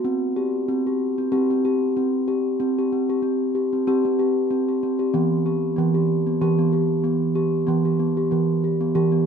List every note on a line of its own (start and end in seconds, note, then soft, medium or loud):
0.04 0.36 C4 medium
0.36 0.68 G4 medium
0.69 1.17 C4 medium
0.87 1.18 G4 medium
1.18 1.31 C4 medium
1.32 1.49 C4 medium
1.32 1.50 G4 medium
1.50 1.64 C4 medium
1.65 1.97 G4 medium
1.97 2.28 C4 medium
2.28 2.60 G4 medium
2.60 2.91 C4 medium
2.79 2.92 G4 medium
2.92 3.10 C4 medium
3.10 3.24 G4 medium
3.22 3.55 C4 medium
3.55 3.73 G4 medium
3.73 3.86 C4 medium
3.87 4.04 C4 medium
3.87 4.05 G4 medium
4.05 4.19 C4 medium
4.19 4.51 G4 medium
4.50 4.69 C4 medium
4.68 4.83 G4 medium
4.83 5.01 C4 medium
4.99 5.14 G4 medium
5.14 5.75 E3 medium
5.14 5.46 B3 medium
5.46 5.78 G4 medium
5.76 6.38 E3 loud
5.76 5.95 B3 medium
5.94 6.27 G4 medium
6.27 6.42 B3 medium
6.41 6.72 E3 loud
6.41 6.60 G4 medium
6.59 6.74 B3 medium
6.73 7.05 G4 medium
7.04 7.37 B3 medium
7.35 7.68 G4 medium
7.67 8.28 E3 medium
7.67 7.86 B3 medium
7.85 8.00 G4 medium
7.99 8.18 B3 medium
8.17 8.32 G4 medium
8.31 8.92 E3 medium
8.31 8.64 B3 medium
8.64 8.82 G4 medium
8.81 8.96 B3 medium
8.95 9.26 E3 medium
8.95 9.13 G4 medium
9.12 9.26 B3 medium